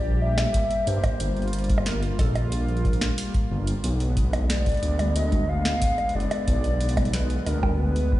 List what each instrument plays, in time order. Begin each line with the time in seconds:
Already playing: detuned saw bass A#1, analog synth pad G3 A#3 G4, soft synth lead D5
0.21 soft synth lead E5
0.38 snare, closed hi-hat, high bongo
0.54 kick, closed hi-hat
0.71 closed hi-hat
0.87 detuned saw bass G2, soft synth lead C5, closed hi-hat
1.04 kick, closed hi-hat, high bongo
1.20 detuned saw bass G1, analog synth pad F4, closed hi-hat
1.37 closed hi-hat
1.42 closed hi-hat
1.48 closed hi-hat
1.53 closed hi-hat
1.59 closed hi-hat
1.64 closed hi-hat
1.70 kick, closed hi-hat
1.78 high bongo
1.86 soft synth lead A#4, snare, closed hi-hat
2.03 closed hi-hat
2.19 detuned saw bass A#1, soft synth lead A4, kick, closed hi-hat, high bongo
2.35 closed hi-hat, high bongo
2.52 soft synth lead A#4, closed hi-hat
2.68 closed hi-hat
2.77 closed hi-hat
2.85 kick, closed hi-hat
2.93 closed hi-hat
3.01 snare, closed hi-hat
3.18 closed hi-hat
3.34 kick, closed hi-hat
3.51 detuned saw bass G1
3.67 closed hi-hat
3.84 detuned saw bass B1, analog synth pad D3 G#3 B3, closed hi-hat
4.00 closed hi-hat
4.17 kick, closed hi-hat
4.33 closed hi-hat, high bongo
4.50 soft synth lead D5, snare, closed hi-hat
4.66 kick, closed hi-hat
4.69 closed hi-hat
4.74 closed hi-hat
4.77 closed hi-hat
4.80 closed hi-hat
4.83 detuned saw bass D2, closed hi-hat
4.99 closed hi-hat, high tom, high bongo
5.16 soft synth lead D#5, closed hi-hat
5.32 kick, closed hi-hat, high tom
5.49 soft synth lead F5
5.65 snare, closed hi-hat
5.82 kick, closed hi-hat
5.98 closed hi-hat, high bongo
6.09 closed hi-hat
6.15 detuned saw bass F#1, soft synth lead D5
6.20 closed hi-hat
6.31 closed hi-hat, high bongo
6.48 detuned saw bass B1, kick, closed hi-hat
6.64 closed hi-hat
6.81 closed hi-hat
6.89 closed hi-hat
6.97 kick, closed hi-hat, high tom, high bongo
7.05 closed hi-hat
7.13 soft synth lead B4, snare, closed hi-hat
7.30 closed hi-hat
7.46 detuned saw bass D2, soft synth lead A#4, closed hi-hat, high bongo
7.63 kick, high tom, high bongo
7.79 soft synth lead B4
7.96 closed hi-hat
8.12 kick